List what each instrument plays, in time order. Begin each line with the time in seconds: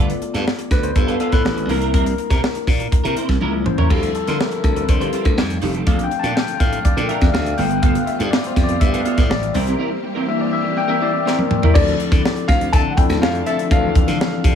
Already playing: slap bass G1, tine electric piano A3 B3 F4 D5, clean electric guitar B3
0.09 muted clean electric guitar stroke, closed hi-hat
0.22 muted clean electric guitar stroke, closed hi-hat
0.34 slap bass G2, clean electric guitar B3 F4 A4, snare, closed hi-hat
0.46 muted clean electric guitar stroke, snare
0.59 muted clean electric guitar stroke, closed hi-hat
0.71 slap bass D2, tine electric piano B4, kick, snare, closed hi-hat
0.83 tine electric piano C5, muted clean electric guitar stroke, closed hi-hat
0.95 slap bass G2, tine electric piano A3 B3 F4 A4, muted clean electric guitar stroke, kick, closed hi-hat
1.07 clean electric guitar B3 F4 A4, closed hi-hat
1.20 clean electric guitar B3 F4 A4, tine electric piano A4, closed hi-hat
1.32 slap bass A2, tine electric piano B4, muted clean electric guitar stroke, kick, snare, closed hi-hat
1.45 slap bass A1, muted clean electric guitar stroke, snare
1.56 muted clean electric guitar stroke, closed hi-hat
1.69 slap bass C2, tine electric piano A#3 D4 E4 A#4, clean electric guitar C4 E4 A#4, open hi-hat
1.81 clean electric guitar C4 E4 A#4, closed hi-hat
1.94 slap bass C2, clean electric guitar C4 E4 A#4, tine electric piano A#4, kick, closed hi-hat
2.06 muted clean electric guitar stroke, closed hi-hat
2.18 muted clean electric guitar stroke, closed hi-hat
2.30 slap bass C3, clean electric guitar C4 E4 A#4, kick, snare, closed hi-hat
2.43 muted clean electric guitar stroke, snare
2.55 muted clean electric guitar stroke, closed hi-hat
2.67 slap bass A#2, kick, snare, open hi-hat
2.79 muted clean electric guitar stroke, closed hi-hat
2.92 muted clean electric guitar stroke, muted slap bass stroke, kick, closed hi-hat
3.04 slap bass C3, clean electric guitar C4 E4 A#4, closed hi-hat
3.16 clean electric guitar C4 E4 C5, closed hi-hat
3.29 slap bass C2, muted clean electric guitar stroke, kick, snare, closed hi-hat
3.41 slap bass C#2, tine electric piano G3 A#3 E4, clean electric guitar C#4 E4 A#4, high tom
3.53 muted clean electric guitar stroke
3.65 slap bass A1, tine electric piano C5, muted clean electric guitar stroke, mid tom
3.78 clean electric guitar C#4 E4 A#4, tine electric piano C#5, floor tom
3.90 slap bass D2, tine electric piano F3 G3 C4 E4 A4, string section F3 G3 E4, clean electric guitar F4 G4 C5, kick, crash
4.03 muted clean electric guitar stroke, closed hi-hat
4.15 tine electric piano A4, muted clean electric guitar stroke, closed hi-hat
4.27 slap bass D3, clean electric guitar F4 G4 C5, tine electric piano A#4, snare, closed hi-hat
4.40 muted clean electric guitar stroke, snare
4.52 muted clean electric guitar stroke, closed hi-hat
4.64 slap bass D2, tine electric piano A4, kick, closed hi-hat
4.76 muted clean electric guitar stroke, closed hi-hat
4.82 tine electric piano B4
4.88 slap bass D3, tine electric piano C5, muted clean electric guitar stroke, kick, closed hi-hat
5.00 clean electric guitar F4 G4 C5, closed hi-hat
5.13 clean electric guitar F4 G4 C5, closed hi-hat
5.25 slap bass D2, muted clean electric guitar stroke, kick, closed hi-hat
5.37 slap bass F2, string section D#3 A3 F4, tine electric piano G3 A3 D#4, muted clean electric guitar stroke, snare
5.50 muted clean electric guitar stroke, closed hi-hat
5.62 slap bass F1, clean electric guitar D#4 G4 A4, open hi-hat
5.74 clean electric guitar D#4 G4 A4, closed hi-hat
5.86 slap bass A#1, string section A#2 D3 F3 F4, tine electric piano A3 C4 D4 F5, clean electric guitar D4 F4 A4, kick, closed hi-hat
5.99 muted clean electric guitar stroke, closed hi-hat
6.04 tine electric piano G5
6.11 muted clean electric guitar stroke, closed hi-hat
6.19 slap bass A#2, clean electric guitar A4, tine electric piano A5
6.24 clean electric guitar D4 F4, closed hi-hat
6.35 tine electric piano G5, muted clean electric guitar stroke, snare
6.48 muted clean electric guitar stroke, closed hi-hat
6.60 slap bass A2, tine electric piano F5, kick, snare, closed hi-hat
6.73 muted clean electric guitar stroke, closed hi-hat
6.85 tine electric piano D5, muted clean electric guitar stroke, muted slap bass stroke, kick, closed hi-hat
6.97 slap bass A#2, clean electric guitar D4 F4 A4, closed hi-hat
7.09 clean electric guitar D4 F4 A#4, tine electric piano E5, closed hi-hat
7.21 slap bass F2, muted clean electric guitar stroke, kick, snare, closed hi-hat
7.33 slap bass D2, tine electric piano F5, muted clean electric guitar stroke, snare
7.46 muted clean electric guitar stroke, closed hi-hat
7.58 slap bass G1, string section G3 B3 F4, clean electric guitar B3 F4 A4, tine electric piano G5, open hi-hat
7.71 muted clean electric guitar stroke, closed hi-hat
7.82 tine electric piano A3 B3 F4 F5, clean electric guitar B3 F4 A4, kick, closed hi-hat
7.95 muted clean electric guitar stroke, closed hi-hat
8.06 tine electric piano E5, muted clean electric guitar stroke, closed hi-hat
8.19 slap bass G2, clean electric guitar B3 F4 A4, closed hi-hat
8.31 tine electric piano D5, muted clean electric guitar stroke, snare
8.44 tine electric piano C5, muted clean electric guitar stroke, closed hi-hat
8.56 slap bass F2, kick, snare, closed hi-hat
8.64 tine electric piano D5
8.69 muted clean electric guitar stroke, closed hi-hat
8.80 slap bass G2, tine electric piano E5, muted clean electric guitar stroke, kick, closed hi-hat
8.93 clean electric guitar B3 F4 A4, closed hi-hat
9.05 clean electric guitar B3 F4 A4, tine electric piano F5, closed hi-hat
9.18 slap bass A2, muted clean electric guitar stroke, kick, snare, closed hi-hat
9.30 slap bass A1, tine electric piano D5, muted clean electric guitar stroke, snare
9.42 muted clean electric guitar stroke, closed hi-hat
9.54 slap bass C2, string section E3 A#3 C4 G4, clean electric guitar C4 E4 A#4, tine electric piano C5, open hi-hat
9.67 clean electric guitar C4 E4 A#4, closed hi-hat
9.79 clean electric guitar C4 E4 A#4
9.91 muted clean electric guitar stroke
10.03 muted clean electric guitar stroke
10.15 clean electric guitar C4 E4 A#4
10.28 tine electric piano A#3 D4 E4 E5, muted clean electric guitar stroke
10.40 tine electric piano D5, muted clean electric guitar stroke
10.53 tine electric piano E5
10.64 muted clean electric guitar stroke
10.76 tine electric piano G5, muted clean electric guitar stroke
10.88 clean electric guitar C4 E4 A#4, tine electric piano E5
11.01 clean electric guitar C4 E4 C5, tine electric piano D5
11.13 muted clean electric guitar stroke
11.25 clean electric guitar C4 E4 A#4, tine electric piano C5, snare
11.38 tine electric piano A#4, muted clean electric guitar stroke, high tom
11.50 muted clean electric guitar stroke, mid tom
11.63 clean electric guitar C4 E4 A#4, floor tom
11.74 slap bass D2, string section C3 D3 A3 C4 D4, tine electric piano F3 C4 D4 E4 A4, grand piano D5, kick, crash
11.88 closed hi-hat
12.00 closed hi-hat
12.12 slap bass D3, kick, snare, closed hi-hat
12.25 snare
12.36 closed hi-hat
12.48 slap bass D2, grand piano F5, kick, snare, closed hi-hat
12.61 closed hi-hat
12.72 slap bass D3, horn section F3 E4 A4, grand piano A5, kick, closed hi-hat
12.91 grand piano F#5
12.97 tine electric piano F3 C4 D4 E4 A4, grand piano G5, kick, closed hi-hat
13.09 slap bass D2, snare, closed hi-hat
13.21 slap bass F2, grand piano F5, snare
13.35 closed hi-hat
13.46 horn section F3 E4 A4, grand piano E5, closed hi-hat
13.59 closed hi-hat
13.70 slap bass D2, tine electric piano E3 F3 C4 D4 A4, grand piano F5, kick, closed hi-hat
13.95 kick, closed hi-hat
14.08 slap bass D3, snare, closed hi-hat
14.21 snare
14.44 slap bass C3, kick, closed hi-hat